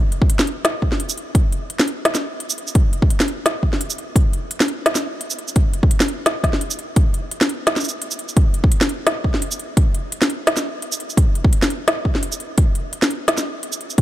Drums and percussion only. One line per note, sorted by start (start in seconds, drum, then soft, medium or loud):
0.12 closed hi-hat soft
0.22 kick loud
0.30 closed hi-hat medium
0.39 snare medium
0.39 shaker soft
0.47 closed hi-hat soft
0.65 snare loud
0.65 closed hi-hat medium
0.82 kick medium
0.92 snare soft
1.00 closed hi-hat medium
1.09 shaker medium
1.18 closed hi-hat soft
1.35 kick loud
1.35 closed hi-hat medium
1.52 closed hi-hat soft
1.70 closed hi-hat medium
1.79 snare medium
1.79 shaker soft
1.88 closed hi-hat soft
2.05 snare loud
2.05 closed hi-hat medium
2.15 snare soft
2.15 shaker medium
2.40 closed hi-hat medium
2.50 shaker medium
2.58 closed hi-hat soft
2.67 shaker soft
2.75 kick loud
2.75 closed hi-hat medium
2.93 closed hi-hat soft
3.02 kick loud
3.10 closed hi-hat medium
3.20 snare medium
3.20 shaker soft
3.28 closed hi-hat soft
3.46 snare loud
3.46 closed hi-hat medium
3.63 kick medium
3.73 snare soft
3.81 closed hi-hat medium
3.90 shaker medium
3.98 closed hi-hat soft
4.16 kick loud
4.16 closed hi-hat medium
4.33 closed hi-hat soft
4.51 closed hi-hat medium
4.60 snare medium
4.60 shaker soft
4.68 closed hi-hat soft
4.86 snare loud
4.86 closed hi-hat medium
4.95 snare medium
4.95 shaker medium
5.21 closed hi-hat medium
5.30 shaker medium
5.39 closed hi-hat soft
5.48 shaker soft
5.56 kick loud
5.56 closed hi-hat medium
5.73 closed hi-hat soft
5.83 kick loud
5.91 closed hi-hat medium
6.00 snare medium
6.00 shaker soft
6.08 closed hi-hat soft
6.26 snare loud
6.26 closed hi-hat medium
6.44 kick medium
6.44 snare medium
6.44 closed hi-hat soft
6.53 snare soft
6.61 closed hi-hat medium
6.71 shaker medium
6.79 closed hi-hat soft
6.96 kick loud
6.96 closed hi-hat medium
7.14 closed hi-hat soft
7.31 closed hi-hat medium
7.41 snare medium
7.41 shaker soft
7.49 closed hi-hat soft
7.67 snare loud
7.67 closed hi-hat medium
7.76 snare medium
7.76 shaker soft
7.80 shaker soft
7.84 shaker soft
7.89 shaker medium
8.02 closed hi-hat medium
8.11 shaker medium
8.19 closed hi-hat soft
8.29 shaker soft
8.37 kick loud
8.37 closed hi-hat medium
8.54 closed hi-hat soft
8.64 kick loud
8.72 closed hi-hat medium
8.81 snare medium
8.81 shaker soft
8.89 closed hi-hat soft
9.07 snare loud
9.07 closed hi-hat medium
9.24 kick medium
9.34 snare soft
9.42 closed hi-hat medium
9.51 shaker medium
9.59 closed hi-hat soft
9.77 kick loud
9.77 closed hi-hat medium
9.94 closed hi-hat soft
10.12 closed hi-hat medium
10.22 snare medium
10.22 shaker soft
10.30 closed hi-hat soft
10.47 snare loud
10.47 closed hi-hat medium
10.57 snare soft
10.57 shaker medium
10.82 closed hi-hat medium
10.92 shaker medium
11.00 closed hi-hat soft
11.10 shaker soft
11.17 kick loud
11.17 closed hi-hat medium
11.35 closed hi-hat soft
11.44 kick loud
11.53 closed hi-hat medium
11.62 snare medium
11.62 shaker soft
11.70 closed hi-hat soft
11.88 snare loud
11.88 closed hi-hat medium
12.05 kick medium
12.15 snare soft
12.23 closed hi-hat medium
12.32 shaker medium
12.40 closed hi-hat soft
12.58 kick loud
12.58 closed hi-hat medium
12.75 closed hi-hat soft
12.93 closed hi-hat medium
13.02 snare medium
13.02 shaker soft
13.11 closed hi-hat soft
13.28 snare loud
13.28 closed hi-hat medium
13.38 snare soft
13.38 shaker medium
13.63 closed hi-hat medium
13.73 shaker medium
13.81 closed hi-hat soft
13.90 shaker soft
13.98 kick loud
13.98 closed hi-hat medium